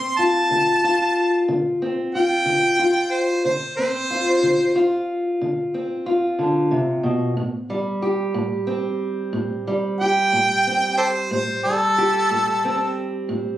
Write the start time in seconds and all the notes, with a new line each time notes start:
Already playing: D3 C4 C6
0.19 F4 A5
0.51 D3
0.84 F4
1.48 D3
1.82 C4
2.15 F4 G5
2.45 D3
2.79 F4
3.12 C5
3.44 D3 C5
3.77 C4 C5
4.10 F4
4.43 D3
4.76 F4
5.41 D3
5.74 C4
6.06 F4
6.39 D3
6.71 C3
7.03 B2
7.37 A2
7.70 G3
8.02 G4
8.34 A2
8.67 C4
9.33 A2
9.67 G3
10.01 G4 G5
10.32 A2
10.67 C4
10.98 G4 A4 C5
11.31 A2 C5
11.64 G3 A4
11.98 G4
12.30 A2
12.65 C4
13.29 A2